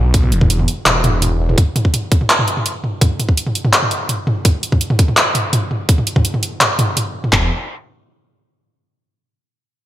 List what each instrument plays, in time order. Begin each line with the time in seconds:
Already playing: detuned saw bass B1
0.14 kick, closed hi-hat
0.23 mid tom
0.32 detuned saw bass E1, closed hi-hat
0.41 kick, mid tom
0.50 closed hi-hat
0.59 mid tom
0.68 closed hi-hat
0.86 detuned saw bass E1, clap, closed hi-hat, mid tom
1.04 closed hi-hat, mid tom
1.22 closed hi-hat, mid tom
1.40 detuned saw bass E1
1.49 mid tom
1.58 kick, closed hi-hat, mid tom
1.76 closed hi-hat, mid tom
1.85 kick
1.94 closed hi-hat, mid tom
2.12 kick, closed hi-hat
2.21 mid tom
2.30 clap, closed hi-hat
2.39 mid tom
2.48 closed hi-hat
2.57 mid tom
2.66 closed hi-hat
2.84 mid tom
3.01 kick, closed hi-hat, mid tom
3.20 closed hi-hat, mid tom
3.29 kick
3.37 closed hi-hat
3.47 mid tom
3.55 closed hi-hat
3.65 mid tom
3.73 clap, closed hi-hat
3.83 mid tom
3.91 closed hi-hat
4.09 closed hi-hat, mid tom
4.27 mid tom
4.45 kick, closed hi-hat, mid tom
4.63 closed hi-hat
4.72 kick, mid tom
4.81 closed hi-hat
4.90 mid tom
4.99 kick, closed hi-hat
5.08 mid tom
5.17 clap, closed hi-hat
5.35 closed hi-hat, mid tom
5.53 closed hi-hat, mid tom
5.71 mid tom
5.89 kick, closed hi-hat
5.98 mid tom
6.07 closed hi-hat
6.16 kick, mid tom
6.25 closed hi-hat
6.34 mid tom
6.43 closed hi-hat
6.61 clap, closed hi-hat, mid tom
6.79 closed hi-hat, mid tom
6.97 closed hi-hat, mid tom
7.24 mid tom
7.33 detuned saw bass E1, kick, clap